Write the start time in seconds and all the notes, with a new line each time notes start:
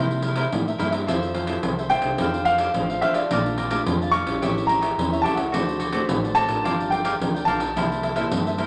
Already playing: C3 E4
0.00 G3 A#3 E4 A#4 C5 E5
0.11 pandeiro
0.22 E4 A#4 C5 E5, pandeiro
0.36 E4 A#4 C5 E5, pandeiro
0.52 G2 A2 G3 A#3 E4, pandeiro
0.68 A#4 C5 E5, pandeiro
0.78 G2 G3 A#3 E4 A#4 C5 E5, pandeiro
0.91 A#4 C5 E5, pandeiro
1.07 F2 F3 C4 E4 F4 A4 C5 E5, pandeiro
1.23 pandeiro
1.34 F4 A4 C5 E5, pandeiro
1.47 C4 E4 F4 A4 C5 E5, pandeiro
1.63 C2 C3, pandeiro
1.79 A4 C5 E5, pandeiro
1.90 C4 E4 F4 A4 C5 E5 G5, pandeiro
2.02 C2 C4 D4 A4, pandeiro
2.18 F2 F3 D4 A4 C5 F5, pandeiro
2.34 pandeiro
2.45 D4 A4 C5 F5, pandeiro
2.58 D4 A4 C5 F5, pandeiro
2.74 A1 F3 C4 D4 A4, pandeiro
2.90 A4 C5 F5, pandeiro
3.01 F3 C4 D4 A4 C5 E5 F5, pandeiro
3.14 A4 C5 D5 F5, pandeiro
3.31 A#1 A#2 A3 D4 F4 A#4 D5 F5 A5, pandeiro
3.46 pandeiro
3.58 A#4 D5 F5 A5, pandeiro
3.70 A3 D4 F4 A#4 D5 F5 A5, pandeiro
3.86 F2 F3, pandeiro
4.02 D5 F5 A5, pandeiro
4.12 A3 D4 F4 A#4 D5 F5 A5 C#6, pandeiro
4.26 A#1 G3 C#4 E4, pandeiro
4.42 A1 A2 G4 A4 C#5 E5, pandeiro
4.58 pandeiro
4.67 G4 A4 C#5 E5 A#5, pandeiro
4.81 G4 A4 C#5 E5, pandeiro
4.98 E2 E3 G3 C#4 E4, pandeiro
5.12 A4 C#5 E5, pandeiro
5.22 C#2 G3 C#4 G4 A4 C#5 E5 A5, pandeiro
5.26 E4
5.35 A4 C#5 E5 F#5, pandeiro
5.52 D2 D3 A3 C4 F#4 A4 C5 D5, pandeiro
5.69 pandeiro
5.80 F#4 A4 C5 D5, pandeiro
5.92 A3 C4 F#4 A4 C5 D5, pandeiro
6.09 A1 A2, pandeiro
6.24 A4 C5 D5, pandeiro
6.35 A3 C4 F#4 A4 C5 D5 A5, pandeiro
6.48 A1 D4 F4 A#4, pandeiro
6.64 G1 G3 F4 A#4 D5 G5, pandeiro
6.80 pandeiro
6.90 F4 A#4 D5 G5, pandeiro
7.04 F4 A#4 D5 G5, pandeiro
7.20 D2 D3 D4 F4 A#4, pandeiro
7.35 A#4 D5 G5, pandeiro
7.45 A#1 D4 F4 A#4 D5 A5, pandeiro
7.49 G5
7.60 A#4 D5 G5, pandeiro
7.76 C2 C3 A#3 E4 A4 A#4 C5 E5, pandeiro
7.92 pandeiro
8.03 E4 A#4 C5 E5, pandeiro
8.15 A#3 E4 A4 A#4 C5 E5, pandeiro
8.31 G2, pandeiro
8.47 A#4 C5 E5, pandeiro
8.58 A#3 E4 A4 A#4 C5 E5, pandeiro